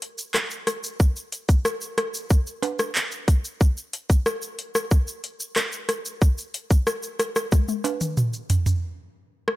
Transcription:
0.02 closed hi-hat, shaker
0.18 shaker
0.34 cross-stick, clap, shaker
0.50 shaker
0.67 cross-stick, closed hi-hat, shaker
0.84 shaker
1.00 kick, shaker
1.16 shaker
1.32 closed hi-hat, shaker
1.49 kick, shaker
1.65 cross-stick, shaker
1.81 shaker
1.98 cross-stick, closed hi-hat, shaker
2.14 shaker
2.30 kick, shaker
2.47 shaker
2.62 closed hi-hat, high timbale, shaker
2.79 cross-stick, shaker
2.95 clap, shaker
3.11 shaker
3.28 kick, closed hi-hat, shaker
3.45 shaker
3.61 kick, shaker
3.77 shaker
3.93 closed hi-hat, shaker
4.10 kick, shaker
4.26 cross-stick, shaker
4.42 shaker
4.59 closed hi-hat, shaker
4.75 cross-stick, shaker
4.91 kick, shaker
5.07 shaker
5.24 closed hi-hat, shaker
5.40 shaker
5.56 cross-stick, clap, shaker
5.72 shaker
5.89 cross-stick, closed hi-hat, shaker
6.05 shaker
6.22 kick, shaker
6.38 shaker
6.54 closed hi-hat, shaker
6.70 kick, shaker
6.87 cross-stick, shaker
7.03 shaker
7.20 cross-stick, closed hi-hat, shaker
7.36 cross-stick, shaker
7.52 kick, high tom, shaker
7.68 high tom, shaker
7.84 closed hi-hat, high timbale, shaker
8.01 mid tom, shaker
8.17 mid tom, shaker
8.33 shaker
8.50 closed hi-hat, floor tom, shaker
8.66 floor tom, shaker
9.48 cross-stick

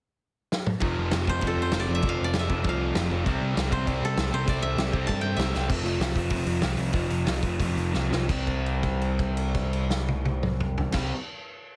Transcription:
0.52 snare
0.66 mid tom
0.80 F1 F2 C3 F3, kick, crash
0.98 F1
1.11 F1 F2 C3 F3, snare, crash
1.27 F1 F2 C3 F3 C5, kick
1.40 F1 F2 C3 F3, kick, crash
1.47 A4
1.56 F2
1.62 C5
1.72 F1 F2 C3 F3, snare, crash
1.80 D5
1.87 F1 F2 C3 F3
1.95 E5
2.02 F1 F2 C3 F3, kick, crash
2.09 F5
2.21 F1 D5
2.33 F1 F2 C3 F3, snare, crash
2.39 E5
2.49 F1 F2 C3 F3, kick
2.63 C2 F2 C3 F3, kick, crash
2.69 F5
2.94 F1 F2 C3 F3, snare, crash
3.10 F1 F2 C3 F3
3.24 C2 C3 G3 C4, kick, crash
3.41 C2
3.54 C2 C3 G3 C4, snare, crash
3.71 C2 C3 G3 C4 C5, kick
3.86 C2 C3 G3 C4, kick, crash
4.02 C3 A4
4.17 C2 C3 G3 C4, snare, crash
4.31 C2 C3 G3 C4 C5
4.46 C2 C3 G3 C4 D5, kick, crash
4.61 C2 E5
4.76 C2 C3 G3 C4, snare, crash
4.92 C2 C3 G3 C4, kick
5.07 G2 C3 G3 C4 A5, kick, crash
5.21 G5
5.37 C2 C3 G3 C4 E5, snare, crash
5.54 C2 C3 G3 C4, snare
5.69 F1 F2 C3 F3, kick, crash
5.83 F1 F2 C3 F3, open hi-hat
5.99 C2 F2 C3 F3, snare, open hi-hat
6.15 F1 F2 C3 F3, kick, open hi-hat
6.30 F1 F2 C3 F3, kick, open hi-hat
6.46 F1 F2 C3 F3, open hi-hat
6.62 C2 F2 C3 F3, snare, open hi-hat
6.77 C2 F2 C3 F3, open hi-hat
6.92 F1 F2 C3 F3, kick, open hi-hat
7.09 F1 F2 C3 F3, open hi-hat
7.25 C2 F2 C3 F3, snare, open hi-hat
7.42 F1 F2 C3 F3, kick, open hi-hat
7.59 F1 F2 C3 F3, kick, open hi-hat
7.75 F1 F2 C3 F3, open hi-hat
7.92 C2 F2 C3 F3, snare
8.09 C2 F2 C3 F3, snare
8.27 C2 C3 G3 C4, kick, crash
8.47 kick, crash
8.66 crash
8.83 kick, crash
9.02 crash
9.19 kick, crash
9.37 crash
9.55 kick, crash
9.73 crash
9.90 snare
10.08 high tom
10.25 high tom
10.43 mid tom
10.60 mid tom
10.78 floor tom
10.92 C2 C3 G3, kick, snare, crash
10.97 C4

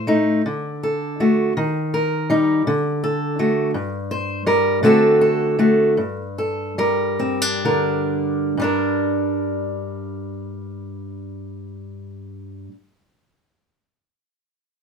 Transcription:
Already playing: A2 C5
0.07 A3 D#4
0.46 D3
0.83 A4
1.20 A3 F#4
1.57 D#3
1.94 A#4
2.30 G3 D#4
2.67 D3
3.04 A4
3.39 A3 F#4
3.74 G2
4.11 C5
4.46 G3 A#4
4.83 D3 A3 C4 F#4 A4
5.21 A4
5.59 A3 F#4
5.97 G2
6.38 A4
6.78 G3 A#4
7.19 C4
7.42 D4
7.65 D3 A#4
8.57 G2 G3
8.62 D4 A#4

